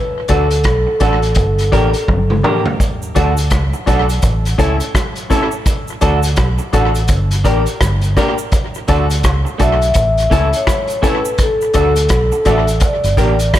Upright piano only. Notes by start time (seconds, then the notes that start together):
0.28 D4 F#4 A4
1.00 D4 F#4 A4
1.72 D4 G4 A#4
2.43 D4 G4 A#4
3.15 D4 F#4 A4
3.86 D4 F#4 A4
4.58 C#4 E4 A4
5.30 C#4 E4 A4
6.01 D4 F#4 A4
6.73 D4 F#4 A4
7.44 D4 G4 A#4
8.16 D4 G4 A#4
8.88 D4 F#4 A4
9.59 D4 F#4 A4
10.31 C#4 E4 A4
11.02 C#4 E4 A4
11.74 D4 F#4 A4
12.45 D4 F#4 A4
13.17 D4 G4 A#4